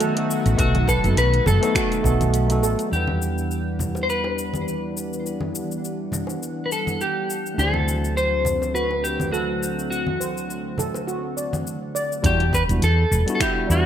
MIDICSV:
0, 0, Header, 1, 7, 480
1, 0, Start_track
1, 0, Key_signature, 1, "minor"
1, 0, Tempo, 582524
1, 485, Time_signature, 4, 2, 24, 8
1, 11420, End_track
2, 0, Start_track
2, 0, Title_t, "Clean electric guitar"
2, 0, Program_c, 0, 27
2, 0, Note_on_c, 0, 66, 84
2, 214, Note_off_c, 0, 66, 0
2, 490, Note_on_c, 0, 66, 92
2, 732, Note_on_c, 0, 69, 99
2, 735, Note_off_c, 0, 66, 0
2, 971, Note_off_c, 0, 69, 0
2, 974, Note_on_c, 0, 71, 118
2, 1212, Note_off_c, 0, 71, 0
2, 1215, Note_on_c, 0, 69, 99
2, 1897, Note_off_c, 0, 69, 0
2, 2413, Note_on_c, 0, 67, 70
2, 3320, Note_on_c, 0, 72, 74
2, 3345, Note_off_c, 0, 67, 0
2, 3369, Note_off_c, 0, 72, 0
2, 3376, Note_on_c, 0, 71, 88
2, 4058, Note_off_c, 0, 71, 0
2, 5485, Note_on_c, 0, 71, 62
2, 5531, Note_off_c, 0, 71, 0
2, 5540, Note_on_c, 0, 69, 80
2, 5779, Note_on_c, 0, 67, 78
2, 5780, Note_off_c, 0, 69, 0
2, 6257, Note_on_c, 0, 69, 92
2, 6267, Note_off_c, 0, 67, 0
2, 6730, Note_off_c, 0, 69, 0
2, 6733, Note_on_c, 0, 72, 95
2, 7205, Note_off_c, 0, 72, 0
2, 7208, Note_on_c, 0, 71, 88
2, 7447, Note_on_c, 0, 67, 85
2, 7454, Note_off_c, 0, 71, 0
2, 7680, Note_off_c, 0, 67, 0
2, 7683, Note_on_c, 0, 66, 77
2, 8151, Note_off_c, 0, 66, 0
2, 8161, Note_on_c, 0, 66, 79
2, 9570, Note_off_c, 0, 66, 0
2, 10101, Note_on_c, 0, 67, 101
2, 10337, Note_on_c, 0, 71, 104
2, 10340, Note_off_c, 0, 67, 0
2, 10400, Note_off_c, 0, 71, 0
2, 10578, Note_on_c, 0, 69, 101
2, 10992, Note_off_c, 0, 69, 0
2, 11002, Note_on_c, 0, 69, 71
2, 11050, Note_off_c, 0, 69, 0
2, 11058, Note_on_c, 0, 67, 88
2, 11276, Note_off_c, 0, 67, 0
2, 11300, Note_on_c, 0, 66, 87
2, 11420, Note_off_c, 0, 66, 0
2, 11420, End_track
3, 0, Start_track
3, 0, Title_t, "Steel pan"
3, 0, Program_c, 1, 114
3, 4, Note_on_c, 1, 69, 106
3, 223, Note_off_c, 1, 69, 0
3, 727, Note_on_c, 1, 71, 79
3, 868, Note_off_c, 1, 71, 0
3, 1205, Note_on_c, 1, 69, 103
3, 1435, Note_off_c, 1, 69, 0
3, 1448, Note_on_c, 1, 66, 93
3, 1665, Note_off_c, 1, 66, 0
3, 1686, Note_on_c, 1, 69, 70
3, 1915, Note_off_c, 1, 69, 0
3, 2167, Note_on_c, 1, 69, 100
3, 2385, Note_off_c, 1, 69, 0
3, 6247, Note_on_c, 1, 62, 77
3, 6465, Note_off_c, 1, 62, 0
3, 7204, Note_on_c, 1, 66, 76
3, 7423, Note_off_c, 1, 66, 0
3, 7687, Note_on_c, 1, 69, 84
3, 7905, Note_off_c, 1, 69, 0
3, 8408, Note_on_c, 1, 72, 62
3, 8548, Note_off_c, 1, 72, 0
3, 8887, Note_on_c, 1, 69, 85
3, 9116, Note_off_c, 1, 69, 0
3, 9125, Note_on_c, 1, 66, 84
3, 9344, Note_off_c, 1, 66, 0
3, 9368, Note_on_c, 1, 74, 60
3, 9585, Note_off_c, 1, 74, 0
3, 9846, Note_on_c, 1, 74, 86
3, 9987, Note_off_c, 1, 74, 0
3, 10087, Note_on_c, 1, 62, 84
3, 10305, Note_off_c, 1, 62, 0
3, 11044, Note_on_c, 1, 64, 97
3, 11264, Note_off_c, 1, 64, 0
3, 11420, End_track
4, 0, Start_track
4, 0, Title_t, "Tine electric piano"
4, 0, Program_c, 2, 4
4, 0, Note_on_c, 2, 57, 92
4, 0, Note_on_c, 2, 59, 84
4, 0, Note_on_c, 2, 63, 85
4, 0, Note_on_c, 2, 66, 79
4, 0, Note_on_c, 2, 69, 103
4, 97, Note_off_c, 2, 57, 0
4, 101, Note_off_c, 2, 59, 0
4, 106, Note_off_c, 2, 63, 0
4, 111, Note_off_c, 2, 66, 0
4, 114, Note_off_c, 2, 69, 0
4, 122, Note_on_c, 2, 57, 83
4, 131, Note_on_c, 2, 59, 79
4, 139, Note_on_c, 2, 63, 74
4, 147, Note_on_c, 2, 66, 71
4, 155, Note_on_c, 2, 69, 87
4, 452, Note_off_c, 2, 57, 0
4, 456, Note_off_c, 2, 59, 0
4, 460, Note_off_c, 2, 63, 0
4, 464, Note_off_c, 2, 66, 0
4, 467, Note_on_c, 2, 57, 87
4, 468, Note_off_c, 2, 69, 0
4, 477, Note_on_c, 2, 59, 85
4, 484, Note_on_c, 2, 63, 81
4, 492, Note_on_c, 2, 66, 85
4, 500, Note_on_c, 2, 69, 95
4, 614, Note_off_c, 2, 57, 0
4, 619, Note_off_c, 2, 59, 0
4, 622, Note_off_c, 2, 63, 0
4, 627, Note_off_c, 2, 66, 0
4, 631, Note_off_c, 2, 69, 0
4, 843, Note_on_c, 2, 57, 76
4, 849, Note_on_c, 2, 59, 67
4, 859, Note_on_c, 2, 63, 69
4, 867, Note_on_c, 2, 66, 62
4, 875, Note_on_c, 2, 69, 82
4, 964, Note_off_c, 2, 57, 0
4, 967, Note_off_c, 2, 59, 0
4, 972, Note_off_c, 2, 63, 0
4, 976, Note_off_c, 2, 66, 0
4, 980, Note_off_c, 2, 69, 0
4, 1323, Note_on_c, 2, 57, 98
4, 1333, Note_on_c, 2, 59, 84
4, 1339, Note_on_c, 2, 63, 83
4, 1348, Note_on_c, 2, 66, 83
4, 1356, Note_on_c, 2, 69, 102
4, 1652, Note_off_c, 2, 57, 0
4, 1657, Note_off_c, 2, 59, 0
4, 1660, Note_off_c, 2, 63, 0
4, 1665, Note_off_c, 2, 66, 0
4, 1669, Note_off_c, 2, 69, 0
4, 1671, Note_on_c, 2, 57, 91
4, 1678, Note_on_c, 2, 59, 89
4, 1687, Note_on_c, 2, 63, 85
4, 1694, Note_on_c, 2, 66, 84
4, 1703, Note_on_c, 2, 69, 104
4, 2019, Note_off_c, 2, 57, 0
4, 2023, Note_off_c, 2, 59, 0
4, 2027, Note_off_c, 2, 63, 0
4, 2031, Note_off_c, 2, 66, 0
4, 2035, Note_off_c, 2, 69, 0
4, 2044, Note_on_c, 2, 57, 79
4, 2051, Note_on_c, 2, 59, 73
4, 2062, Note_on_c, 2, 63, 77
4, 2069, Note_on_c, 2, 66, 78
4, 2077, Note_on_c, 2, 69, 93
4, 2373, Note_off_c, 2, 57, 0
4, 2376, Note_off_c, 2, 59, 0
4, 2377, Note_on_c, 2, 55, 64
4, 2381, Note_off_c, 2, 63, 0
4, 2385, Note_off_c, 2, 66, 0
4, 2389, Note_off_c, 2, 69, 0
4, 2393, Note_on_c, 2, 62, 57
4, 2409, Note_on_c, 2, 64, 53
4, 2425, Note_on_c, 2, 78, 61
4, 2440, Note_on_c, 2, 71, 70
4, 6205, Note_off_c, 2, 55, 0
4, 6214, Note_off_c, 2, 62, 0
4, 6216, Note_on_c, 2, 57, 66
4, 6222, Note_off_c, 2, 64, 0
4, 6230, Note_off_c, 2, 78, 0
4, 6232, Note_on_c, 2, 62, 58
4, 6237, Note_off_c, 2, 71, 0
4, 6247, Note_on_c, 2, 64, 60
4, 6263, Note_on_c, 2, 66, 56
4, 6280, Note_on_c, 2, 72, 77
4, 10045, Note_off_c, 2, 57, 0
4, 10053, Note_off_c, 2, 62, 0
4, 10061, Note_off_c, 2, 64, 0
4, 10069, Note_off_c, 2, 66, 0
4, 10072, Note_on_c, 2, 55, 84
4, 10077, Note_off_c, 2, 72, 0
4, 10079, Note_on_c, 2, 59, 77
4, 10088, Note_on_c, 2, 62, 76
4, 10097, Note_on_c, 2, 64, 78
4, 10104, Note_on_c, 2, 66, 90
4, 10217, Note_off_c, 2, 55, 0
4, 10220, Note_off_c, 2, 59, 0
4, 10225, Note_off_c, 2, 62, 0
4, 10229, Note_off_c, 2, 64, 0
4, 10232, Note_off_c, 2, 66, 0
4, 10446, Note_on_c, 2, 55, 74
4, 10456, Note_on_c, 2, 59, 67
4, 10463, Note_on_c, 2, 62, 64
4, 10470, Note_on_c, 2, 64, 67
4, 10480, Note_on_c, 2, 66, 73
4, 10566, Note_off_c, 2, 55, 0
4, 10571, Note_off_c, 2, 59, 0
4, 10574, Note_off_c, 2, 62, 0
4, 10578, Note_off_c, 2, 64, 0
4, 10583, Note_off_c, 2, 66, 0
4, 10927, Note_on_c, 2, 55, 82
4, 10935, Note_on_c, 2, 59, 82
4, 10943, Note_on_c, 2, 62, 82
4, 10953, Note_on_c, 2, 64, 83
4, 10959, Note_on_c, 2, 66, 95
4, 11254, Note_off_c, 2, 55, 0
4, 11258, Note_off_c, 2, 59, 0
4, 11262, Note_off_c, 2, 62, 0
4, 11267, Note_off_c, 2, 64, 0
4, 11268, Note_on_c, 2, 55, 93
4, 11270, Note_off_c, 2, 66, 0
4, 11277, Note_on_c, 2, 59, 87
4, 11287, Note_on_c, 2, 62, 77
4, 11293, Note_on_c, 2, 64, 77
4, 11301, Note_on_c, 2, 66, 93
4, 11420, Note_off_c, 2, 55, 0
4, 11420, Note_off_c, 2, 59, 0
4, 11420, Note_off_c, 2, 62, 0
4, 11420, Note_off_c, 2, 64, 0
4, 11420, Note_off_c, 2, 66, 0
4, 11420, End_track
5, 0, Start_track
5, 0, Title_t, "Analog synth pad"
5, 0, Program_c, 3, 89
5, 0, Note_on_c, 3, 51, 77
5, 0, Note_on_c, 3, 54, 74
5, 0, Note_on_c, 3, 57, 69
5, 0, Note_on_c, 3, 59, 72
5, 0, Note_on_c, 3, 66, 86
5, 2369, Note_off_c, 3, 66, 0
5, 2371, Note_off_c, 3, 51, 0
5, 2371, Note_off_c, 3, 54, 0
5, 2374, Note_off_c, 3, 59, 0
5, 2375, Note_off_c, 3, 57, 0
5, 2402, Note_on_c, 3, 52, 73
5, 2402, Note_on_c, 3, 62, 63
5, 2402, Note_on_c, 3, 78, 78
5, 2403, Note_on_c, 3, 59, 64
5, 2405, Note_on_c, 3, 55, 66
5, 6211, Note_off_c, 3, 52, 0
5, 6211, Note_off_c, 3, 59, 0
5, 6211, Note_off_c, 3, 62, 0
5, 6212, Note_off_c, 3, 55, 0
5, 6245, Note_on_c, 3, 57, 66
5, 6245, Note_on_c, 3, 60, 67
5, 6246, Note_on_c, 3, 50, 73
5, 6249, Note_on_c, 3, 54, 62
5, 10051, Note_off_c, 3, 78, 0
5, 10052, Note_off_c, 3, 57, 0
5, 10052, Note_off_c, 3, 60, 0
5, 10053, Note_off_c, 3, 50, 0
5, 10054, Note_off_c, 3, 54, 0
5, 11420, End_track
6, 0, Start_track
6, 0, Title_t, "Fretless electric bass"
6, 0, Program_c, 4, 35
6, 376, Note_on_c, 4, 33, 86
6, 454, Note_off_c, 4, 33, 0
6, 482, Note_on_c, 4, 35, 96
6, 796, Note_off_c, 4, 35, 0
6, 858, Note_on_c, 4, 30, 98
6, 935, Note_off_c, 4, 30, 0
6, 964, Note_on_c, 4, 35, 89
6, 1143, Note_off_c, 4, 35, 0
6, 1206, Note_on_c, 4, 30, 108
6, 1300, Note_off_c, 4, 30, 0
6, 1683, Note_on_c, 4, 35, 99
6, 2168, Note_off_c, 4, 35, 0
6, 2168, Note_on_c, 4, 33, 74
6, 2261, Note_off_c, 4, 33, 0
6, 2406, Note_on_c, 4, 40, 72
6, 6224, Note_off_c, 4, 40, 0
6, 6246, Note_on_c, 4, 38, 76
6, 10064, Note_off_c, 4, 38, 0
6, 10085, Note_on_c, 4, 40, 99
6, 10397, Note_off_c, 4, 40, 0
6, 10458, Note_on_c, 4, 28, 96
6, 10535, Note_off_c, 4, 28, 0
6, 10565, Note_on_c, 4, 40, 89
6, 10744, Note_off_c, 4, 40, 0
6, 10805, Note_on_c, 4, 28, 109
6, 10900, Note_off_c, 4, 28, 0
6, 11287, Note_on_c, 4, 40, 99
6, 11420, Note_off_c, 4, 40, 0
6, 11420, End_track
7, 0, Start_track
7, 0, Title_t, "Drums"
7, 4, Note_on_c, 9, 42, 70
7, 11, Note_on_c, 9, 69, 44
7, 86, Note_off_c, 9, 42, 0
7, 94, Note_off_c, 9, 69, 0
7, 138, Note_on_c, 9, 42, 48
7, 220, Note_off_c, 9, 42, 0
7, 253, Note_on_c, 9, 69, 71
7, 335, Note_off_c, 9, 69, 0
7, 377, Note_on_c, 9, 42, 32
7, 384, Note_on_c, 9, 69, 31
7, 459, Note_off_c, 9, 42, 0
7, 467, Note_off_c, 9, 69, 0
7, 482, Note_on_c, 9, 36, 125
7, 484, Note_on_c, 9, 42, 78
7, 492, Note_on_c, 9, 69, 43
7, 564, Note_off_c, 9, 36, 0
7, 567, Note_off_c, 9, 42, 0
7, 574, Note_off_c, 9, 69, 0
7, 615, Note_on_c, 9, 63, 92
7, 616, Note_on_c, 9, 42, 35
7, 697, Note_off_c, 9, 63, 0
7, 699, Note_off_c, 9, 42, 0
7, 722, Note_on_c, 9, 36, 66
7, 731, Note_on_c, 9, 69, 77
7, 805, Note_off_c, 9, 36, 0
7, 814, Note_off_c, 9, 69, 0
7, 852, Note_on_c, 9, 60, 35
7, 858, Note_on_c, 9, 42, 32
7, 865, Note_on_c, 9, 69, 31
7, 935, Note_off_c, 9, 60, 0
7, 940, Note_off_c, 9, 42, 0
7, 948, Note_off_c, 9, 69, 0
7, 967, Note_on_c, 9, 42, 73
7, 975, Note_on_c, 9, 69, 41
7, 1050, Note_off_c, 9, 42, 0
7, 1057, Note_off_c, 9, 69, 0
7, 1101, Note_on_c, 9, 42, 35
7, 1183, Note_off_c, 9, 42, 0
7, 1203, Note_on_c, 9, 64, 75
7, 1205, Note_on_c, 9, 63, 66
7, 1216, Note_on_c, 9, 69, 74
7, 1285, Note_off_c, 9, 64, 0
7, 1288, Note_off_c, 9, 63, 0
7, 1299, Note_off_c, 9, 69, 0
7, 1341, Note_on_c, 9, 42, 47
7, 1341, Note_on_c, 9, 60, 67
7, 1348, Note_on_c, 9, 69, 33
7, 1423, Note_off_c, 9, 42, 0
7, 1423, Note_off_c, 9, 60, 0
7, 1431, Note_off_c, 9, 69, 0
7, 1443, Note_on_c, 9, 36, 115
7, 1447, Note_on_c, 9, 26, 80
7, 1447, Note_on_c, 9, 42, 69
7, 1455, Note_on_c, 9, 69, 44
7, 1525, Note_off_c, 9, 36, 0
7, 1530, Note_off_c, 9, 26, 0
7, 1530, Note_off_c, 9, 42, 0
7, 1537, Note_off_c, 9, 69, 0
7, 1581, Note_on_c, 9, 42, 35
7, 1588, Note_on_c, 9, 69, 30
7, 1663, Note_off_c, 9, 42, 0
7, 1670, Note_off_c, 9, 69, 0
7, 1683, Note_on_c, 9, 36, 57
7, 1694, Note_on_c, 9, 69, 74
7, 1765, Note_off_c, 9, 36, 0
7, 1776, Note_off_c, 9, 69, 0
7, 1819, Note_on_c, 9, 42, 32
7, 1822, Note_on_c, 9, 63, 82
7, 1827, Note_on_c, 9, 69, 35
7, 1902, Note_off_c, 9, 42, 0
7, 1904, Note_off_c, 9, 63, 0
7, 1909, Note_off_c, 9, 69, 0
7, 1925, Note_on_c, 9, 42, 73
7, 1933, Note_on_c, 9, 69, 43
7, 2008, Note_off_c, 9, 42, 0
7, 2015, Note_off_c, 9, 69, 0
7, 2058, Note_on_c, 9, 42, 45
7, 2066, Note_on_c, 9, 69, 31
7, 2141, Note_off_c, 9, 42, 0
7, 2148, Note_off_c, 9, 69, 0
7, 2172, Note_on_c, 9, 69, 76
7, 2254, Note_off_c, 9, 69, 0
7, 2298, Note_on_c, 9, 42, 34
7, 2306, Note_on_c, 9, 69, 32
7, 2381, Note_off_c, 9, 42, 0
7, 2388, Note_off_c, 9, 69, 0
7, 2414, Note_on_c, 9, 69, 37
7, 2496, Note_off_c, 9, 69, 0
7, 2534, Note_on_c, 9, 63, 91
7, 2616, Note_off_c, 9, 63, 0
7, 2654, Note_on_c, 9, 69, 67
7, 2736, Note_off_c, 9, 69, 0
7, 2786, Note_on_c, 9, 69, 28
7, 2868, Note_off_c, 9, 69, 0
7, 2893, Note_on_c, 9, 69, 35
7, 2976, Note_off_c, 9, 69, 0
7, 3124, Note_on_c, 9, 63, 50
7, 3125, Note_on_c, 9, 64, 74
7, 3135, Note_on_c, 9, 69, 61
7, 3207, Note_off_c, 9, 63, 0
7, 3208, Note_off_c, 9, 64, 0
7, 3218, Note_off_c, 9, 69, 0
7, 3254, Note_on_c, 9, 60, 56
7, 3267, Note_on_c, 9, 69, 27
7, 3337, Note_off_c, 9, 60, 0
7, 3350, Note_off_c, 9, 69, 0
7, 3376, Note_on_c, 9, 69, 37
7, 3459, Note_off_c, 9, 69, 0
7, 3496, Note_on_c, 9, 60, 58
7, 3578, Note_off_c, 9, 60, 0
7, 3614, Note_on_c, 9, 69, 62
7, 3696, Note_off_c, 9, 69, 0
7, 3737, Note_on_c, 9, 63, 73
7, 3749, Note_on_c, 9, 69, 30
7, 3820, Note_off_c, 9, 63, 0
7, 3831, Note_off_c, 9, 69, 0
7, 3857, Note_on_c, 9, 69, 37
7, 3940, Note_off_c, 9, 69, 0
7, 4096, Note_on_c, 9, 69, 62
7, 4179, Note_off_c, 9, 69, 0
7, 4229, Note_on_c, 9, 69, 28
7, 4311, Note_off_c, 9, 69, 0
7, 4336, Note_on_c, 9, 69, 42
7, 4419, Note_off_c, 9, 69, 0
7, 4454, Note_on_c, 9, 63, 75
7, 4537, Note_off_c, 9, 63, 0
7, 4575, Note_on_c, 9, 69, 67
7, 4657, Note_off_c, 9, 69, 0
7, 4709, Note_on_c, 9, 69, 30
7, 4791, Note_off_c, 9, 69, 0
7, 4817, Note_on_c, 9, 69, 36
7, 4899, Note_off_c, 9, 69, 0
7, 5041, Note_on_c, 9, 63, 59
7, 5048, Note_on_c, 9, 64, 71
7, 5056, Note_on_c, 9, 69, 67
7, 5124, Note_off_c, 9, 63, 0
7, 5130, Note_off_c, 9, 64, 0
7, 5139, Note_off_c, 9, 69, 0
7, 5167, Note_on_c, 9, 60, 49
7, 5188, Note_on_c, 9, 69, 29
7, 5249, Note_off_c, 9, 60, 0
7, 5270, Note_off_c, 9, 69, 0
7, 5296, Note_on_c, 9, 69, 40
7, 5378, Note_off_c, 9, 69, 0
7, 5535, Note_on_c, 9, 69, 64
7, 5617, Note_off_c, 9, 69, 0
7, 5662, Note_on_c, 9, 63, 73
7, 5669, Note_on_c, 9, 69, 28
7, 5744, Note_off_c, 9, 63, 0
7, 5751, Note_off_c, 9, 69, 0
7, 5777, Note_on_c, 9, 69, 37
7, 5859, Note_off_c, 9, 69, 0
7, 6016, Note_on_c, 9, 69, 66
7, 6099, Note_off_c, 9, 69, 0
7, 6149, Note_on_c, 9, 69, 30
7, 6231, Note_off_c, 9, 69, 0
7, 6255, Note_on_c, 9, 69, 44
7, 6338, Note_off_c, 9, 69, 0
7, 6375, Note_on_c, 9, 63, 91
7, 6458, Note_off_c, 9, 63, 0
7, 6496, Note_on_c, 9, 69, 73
7, 6578, Note_off_c, 9, 69, 0
7, 6629, Note_on_c, 9, 69, 31
7, 6711, Note_off_c, 9, 69, 0
7, 6737, Note_on_c, 9, 69, 39
7, 6820, Note_off_c, 9, 69, 0
7, 6962, Note_on_c, 9, 64, 69
7, 6970, Note_on_c, 9, 63, 56
7, 6975, Note_on_c, 9, 69, 71
7, 7044, Note_off_c, 9, 64, 0
7, 7052, Note_off_c, 9, 63, 0
7, 7057, Note_off_c, 9, 69, 0
7, 7102, Note_on_c, 9, 60, 52
7, 7109, Note_on_c, 9, 69, 30
7, 7185, Note_off_c, 9, 60, 0
7, 7192, Note_off_c, 9, 69, 0
7, 7217, Note_on_c, 9, 69, 41
7, 7299, Note_off_c, 9, 69, 0
7, 7340, Note_on_c, 9, 60, 53
7, 7422, Note_off_c, 9, 60, 0
7, 7455, Note_on_c, 9, 69, 64
7, 7538, Note_off_c, 9, 69, 0
7, 7579, Note_on_c, 9, 63, 81
7, 7588, Note_on_c, 9, 69, 33
7, 7662, Note_off_c, 9, 63, 0
7, 7670, Note_off_c, 9, 69, 0
7, 7696, Note_on_c, 9, 69, 39
7, 7778, Note_off_c, 9, 69, 0
7, 7935, Note_on_c, 9, 69, 68
7, 8017, Note_off_c, 9, 69, 0
7, 8068, Note_on_c, 9, 69, 32
7, 8150, Note_off_c, 9, 69, 0
7, 8175, Note_on_c, 9, 69, 42
7, 8258, Note_off_c, 9, 69, 0
7, 8294, Note_on_c, 9, 63, 75
7, 8377, Note_off_c, 9, 63, 0
7, 8416, Note_on_c, 9, 69, 76
7, 8498, Note_off_c, 9, 69, 0
7, 8548, Note_on_c, 9, 69, 29
7, 8630, Note_off_c, 9, 69, 0
7, 8655, Note_on_c, 9, 69, 39
7, 8738, Note_off_c, 9, 69, 0
7, 8880, Note_on_c, 9, 64, 73
7, 8895, Note_on_c, 9, 63, 54
7, 8896, Note_on_c, 9, 69, 68
7, 8962, Note_off_c, 9, 64, 0
7, 8977, Note_off_c, 9, 63, 0
7, 8978, Note_off_c, 9, 69, 0
7, 9018, Note_on_c, 9, 60, 59
7, 9028, Note_on_c, 9, 69, 33
7, 9101, Note_off_c, 9, 60, 0
7, 9110, Note_off_c, 9, 69, 0
7, 9135, Note_on_c, 9, 69, 37
7, 9217, Note_off_c, 9, 69, 0
7, 9374, Note_on_c, 9, 69, 65
7, 9457, Note_off_c, 9, 69, 0
7, 9501, Note_on_c, 9, 63, 88
7, 9509, Note_on_c, 9, 69, 31
7, 9584, Note_off_c, 9, 63, 0
7, 9591, Note_off_c, 9, 69, 0
7, 9616, Note_on_c, 9, 69, 42
7, 9699, Note_off_c, 9, 69, 0
7, 9855, Note_on_c, 9, 69, 74
7, 9937, Note_off_c, 9, 69, 0
7, 9989, Note_on_c, 9, 69, 31
7, 10071, Note_off_c, 9, 69, 0
7, 10084, Note_on_c, 9, 36, 120
7, 10088, Note_on_c, 9, 42, 68
7, 10096, Note_on_c, 9, 69, 44
7, 10167, Note_off_c, 9, 36, 0
7, 10171, Note_off_c, 9, 42, 0
7, 10178, Note_off_c, 9, 69, 0
7, 10219, Note_on_c, 9, 42, 34
7, 10302, Note_off_c, 9, 42, 0
7, 10324, Note_on_c, 9, 36, 68
7, 10335, Note_on_c, 9, 69, 74
7, 10406, Note_off_c, 9, 36, 0
7, 10418, Note_off_c, 9, 69, 0
7, 10460, Note_on_c, 9, 42, 30
7, 10467, Note_on_c, 9, 69, 32
7, 10542, Note_off_c, 9, 42, 0
7, 10550, Note_off_c, 9, 69, 0
7, 10566, Note_on_c, 9, 42, 67
7, 10573, Note_on_c, 9, 69, 45
7, 10648, Note_off_c, 9, 42, 0
7, 10656, Note_off_c, 9, 69, 0
7, 10813, Note_on_c, 9, 69, 75
7, 10895, Note_off_c, 9, 69, 0
7, 10940, Note_on_c, 9, 42, 45
7, 10948, Note_on_c, 9, 69, 35
7, 11023, Note_off_c, 9, 42, 0
7, 11030, Note_off_c, 9, 69, 0
7, 11044, Note_on_c, 9, 36, 108
7, 11046, Note_on_c, 9, 26, 77
7, 11046, Note_on_c, 9, 42, 67
7, 11054, Note_on_c, 9, 69, 44
7, 11126, Note_off_c, 9, 36, 0
7, 11129, Note_off_c, 9, 26, 0
7, 11129, Note_off_c, 9, 42, 0
7, 11136, Note_off_c, 9, 69, 0
7, 11293, Note_on_c, 9, 69, 74
7, 11376, Note_off_c, 9, 69, 0
7, 11420, End_track
0, 0, End_of_file